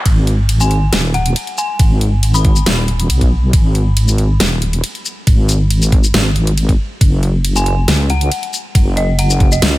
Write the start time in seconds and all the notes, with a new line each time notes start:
0.06 G#1, kick, closed hi-hat, ride
0.27 closed hi-hat
0.49 closed hi-hat, ride
0.60 G#5, shaker
0.71 closed hi-hat
0.93 D#1, snare, closed hi-hat, ride
1.14 F#5, closed hi-hat
1.26 closed hi-hat
1.36 closed hi-hat, ride
1.47 closed hi-hat
1.58 G#5, shaker
1.79 G#1, kick, closed hi-hat, ride
2.01 closed hi-hat
2.23 closed hi-hat, ride
2.34 B5, shaker
2.45 kick, closed hi-hat
2.56 shaker
2.66 D#1, snare, closed hi-hat, ride
2.88 closed hi-hat
3.00 closed hi-hat
3.10 B1, closed hi-hat, ride
3.21 kick, closed hi-hat
3.53 G#1, kick, closed hi-hat, ride
3.75 closed hi-hat
3.97 closed hi-hat, ride
4.08 shaker
4.18 closed hi-hat
4.40 D#1, snare, closed hi-hat, ride
4.62 closed hi-hat
4.73 closed hi-hat
4.84 closed hi-hat, ride
4.95 closed hi-hat
5.05 shaker
5.27 G#1, kick, closed hi-hat, ride
5.49 closed hi-hat, shaker
5.71 closed hi-hat, ride
5.82 shaker
5.92 kick, closed hi-hat
6.04 shaker
6.14 G#1, snare, closed hi-hat, ride
6.36 closed hi-hat
6.47 closed hi-hat
6.58 closed hi-hat, ride
6.69 kick, closed hi-hat
7.01 F#1, kick, closed hi-hat, ride
7.23 closed hi-hat
7.45 closed hi-hat, ride
7.56 G#5, shaker
7.66 closed hi-hat
7.88 C#2, snare, closed hi-hat, ride
8.10 F#5, closed hi-hat
8.21 closed hi-hat
8.32 closed hi-hat, ride
8.43 closed hi-hat
8.53 shaker
8.75 F#1, kick, closed hi-hat, ride
8.97 D#5, closed hi-hat
9.19 F#5, closed hi-hat, ride
9.30 shaker
9.40 kick, closed hi-hat
9.52 D#5, shaker
9.62 C#2, snare, closed hi-hat, ride